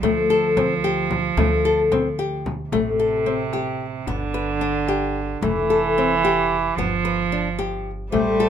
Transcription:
0.01 upright bass D2, cello F3, nylon-string guitar A3, frame drum
0.30 nylon-string guitar A4
0.57 nylon-string guitar C4, frame drum
0.84 nylon-string guitar G4
1.11 frame drum
1.37 upright bass D2, nylon-string guitar A3, frame drum
1.65 nylon-string guitar A4
1.92 nylon-string guitar C4, frame drum
2.19 nylon-string guitar G4
2.46 frame drum
2.70 upright bass A1, cello C3, nylon-string guitar A3, frame drum
3.00 nylon-string guitar A4
3.26 nylon-string guitar C4
3.53 nylon-string guitar G4, frame drum
3.80 frame drum
4.06 upright bass G1, cello D3, nylon-string guitar B3, frame drum
4.34 nylon-string guitar B4
4.61 nylon-string guitar D4
4.88 nylon-string guitar G4, frame drum
5.16 frame drum
5.41 upright bass F1, cello E3, nylon-string guitar A3, frame drum
5.70 nylon-string guitar A4
5.98 nylon-string guitar C4
6.24 nylon-string guitar G4, frame drum
6.51 frame drum
6.77 upright bass G1, cello F3, nylon-string guitar B3, frame drum
7.05 nylon-string guitar B4
7.32 nylon-string guitar D4
7.59 nylon-string guitar G4, frame drum
8.11 upright bass A1, cello G3, harmonium A3 G4 C5, nylon-string guitar A3, frame drum
8.40 nylon-string guitar A4

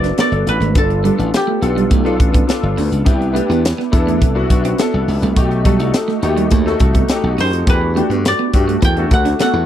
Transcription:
Already playing: slap bass F#1, grand piano B3 D4 F#4 A4 B4, koto G4 B4 D5 E5
0.04 clean electric guitar D4, snare, closed hi-hat
0.17 grand piano B3 D4 F#4 A4, clean electric guitar B3, koto D5, snare, closed hi-hat
0.32 slap bass G1, muted clean electric guitar stroke, closed hi-hat
0.46 slap bass A1, koto B4, closed hi-hat
0.60 slap bass G#1, clean electric guitar A3, closed hi-hat
0.74 slap bass G1, grand piano B3 D4 F4 A4, koto A4, kick, closed hi-hat
0.90 muted clean electric guitar stroke, closed hi-hat
1.04 clean electric guitar G3, grand piano B3 D4 F4 A4, closed hi-hat
1.19 slap bass A1, clean electric guitar A3, closed hi-hat
1.34 koto G4, snare, closed hi-hat
1.47 clean electric guitar A3
1.61 slap bass B1, grand piano B3 D4 F4 A4, muted clean electric guitar stroke, closed hi-hat
1.76 clean electric guitar G3, closed hi-hat
1.91 slap bass B1, clean electric guitar A3, kick, closed hi-hat
2.04 grand piano B3 D4 F4 A4, muted clean electric guitar stroke, closed hi-hat
2.20 slap bass A1, kick, closed hi-hat
2.34 clean electric guitar B3, kick, closed hi-hat
2.47 grand piano B3 D4 F4 A4, snare, closed hi-hat
2.63 slap bass G1
2.77 slap bass D2, clean electric guitar D4, open hi-hat
2.92 slap bass C#2, closed hi-hat
3.04 slap bass C2, grand piano B3 D4 E4 G4, kick, closed hi-hat
3.21 muted clean electric guitar stroke, closed hi-hat
3.33 clean electric guitar A3, grand piano B3 D4 E4 G4, closed hi-hat
3.49 slap bass E2, clean electric guitar B3, closed hi-hat
3.65 snare, closed hi-hat
3.78 clean electric guitar B3, snare
3.91 slap bass E2, grand piano B3 D4 E4 A4, muted clean electric guitar stroke, kick, closed hi-hat
4.07 clean electric guitar A3, closed hi-hat
4.22 slap bass C2, clean electric guitar B3, kick, closed hi-hat
4.35 grand piano B3 D4 E4 F#4, muted clean electric guitar stroke
4.50 slap bass B1, kick, closed hi-hat
4.65 clean electric guitar C4, closed hi-hat
4.78 grand piano B3 D4 E4 A4, clean electric guitar B3, snare, closed hi-hat
4.94 slap bass C2, muted clean electric guitar stroke
5.08 slap bass C#2, open hi-hat
5.22 slap bass C2, clean electric guitar A3, closed hi-hat
5.36 slap bass B1, grand piano A3 D#4 F#4 G4, kick, closed hi-hat
5.51 muted clean electric guitar stroke, closed hi-hat
5.64 clean electric guitar G3, grand piano A3 D#4 F#4 A4, kick, closed hi-hat
5.80 slap bass C2, clean electric guitar A3, closed hi-hat
5.94 snare, closed hi-hat
6.08 clean electric guitar A3, snare
6.22 slap bass D#2, grand piano A3 D#4 F#4 G4, muted clean electric guitar stroke, closed hi-hat
6.37 clean electric guitar G3, closed hi-hat
6.51 slap bass D#2, clean electric guitar A3, kick, closed hi-hat
6.66 grand piano A3 D#4 F#4 A4, muted clean electric guitar stroke, snare
6.80 slap bass C2, kick, closed hi-hat
6.95 clean electric guitar B3, kick, closed hi-hat
7.08 grand piano A3 D#4 F#4 G4, snare, closed hi-hat
7.23 slap bass B1
7.38 slap bass F#2, clean electric guitar D#4, koto C5, open hi-hat
7.52 slap bass F2, closed hi-hat
7.67 slap bass E2, grand piano A3 D4 F#4 G4, koto B4, kick, closed hi-hat
7.81 muted clean electric guitar stroke
7.96 grand piano A3 D4 F#4 G4, clean electric guitar A3, closed hi-hat
8.10 slap bass G2, clean electric guitar B3, closed hi-hat
8.25 koto D5, snare, closed hi-hat
8.39 clean electric guitar B3
8.53 slap bass G2, grand piano A3 D4 F#4 G4, muted clean electric guitar stroke, kick, closed hi-hat
8.68 clean electric guitar A3, closed hi-hat
8.82 slap bass E2, clean electric guitar B3, koto G5, kick, closed hi-hat
8.96 grand piano A3 D4 F#4 A4, muted clean electric guitar stroke, closed hi-hat
9.11 slap bass D2, koto F#5, kick, closed hi-hat
9.25 clean electric guitar D4, snare, closed hi-hat
9.39 grand piano A3 D4 F#4 A4, clean electric guitar B3, koto F#5, snare, closed hi-hat
9.53 slap bass E2, muted clean electric guitar stroke

